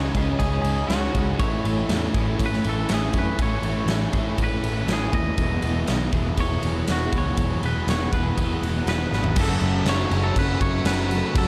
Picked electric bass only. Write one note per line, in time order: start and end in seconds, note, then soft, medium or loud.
0.14 0.33 C#2 medium
0.39 0.58 C#2 medium
0.64 0.83 C#2 medium
0.89 1.07 C#2 medium
1.14 1.33 C#2 medium
1.39 1.58 A1 medium
1.64 1.83 A1 medium
1.89 2.07 E2 medium
2.15 2.33 A1 medium
2.39 2.58 A1 medium
2.65 2.83 A1 medium
2.90 3.08 A1 medium
3.14 3.33 F#2 medium
3.39 3.57 A1 medium
3.63 3.82 A1 medium
3.86 4.06 A1 medium
4.13 4.32 A1 medium
4.38 4.57 A1 medium
4.63 4.81 A1 medium
4.87 5.06 A1 medium
5.12 5.31 D#2 medium
5.38 5.57 E1 loud
5.64 5.82 E1 medium
5.89 6.07 B1 medium
6.13 6.32 E1 medium
6.38 6.56 E1 medium
6.63 6.81 E1 medium
6.89 7.07 E1 medium
7.13 7.31 C#2 medium
7.37 7.56 E1 medium
7.63 7.81 E1 medium
7.87 8.06 E1 medium
8.13 8.31 E1 medium
8.37 8.56 E1 medium
8.62 8.80 E1 medium
8.86 9.05 E1 medium
9.13 9.37 G#1 medium
9.37 9.55 F#1 loud
9.62 9.80 F#1 medium
9.85 10.04 F#1 medium
10.11 10.30 F#1 loud
10.36 10.54 F#1 medium
10.61 10.79 F#1 loud
10.85 11.22 F#1 medium
11.35 11.48 F#1 loud